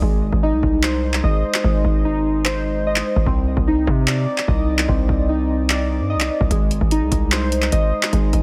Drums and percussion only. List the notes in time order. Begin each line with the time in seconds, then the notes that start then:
0.02 kick
0.33 kick
0.63 kick
0.83 clap
1.14 clap
1.24 kick
1.54 clap
1.64 kick
1.85 kick
2.45 clap
2.96 clap
3.16 kick
3.26 kick
3.57 kick
3.87 kick
4.08 clap
4.38 clap
4.48 kick
4.79 clap
4.89 kick
5.09 kick
5.70 clap
6.20 clap
6.41 kick
6.51 kick, closed hi-hat
6.71 closed hi-hat
6.81 kick
6.91 closed hi-hat
7.12 kick, closed hi-hat
7.32 clap, closed hi-hat
7.52 closed hi-hat
7.62 clap
7.72 kick, closed hi-hat
8.03 clap
8.13 kick, closed hi-hat
8.33 kick, closed hi-hat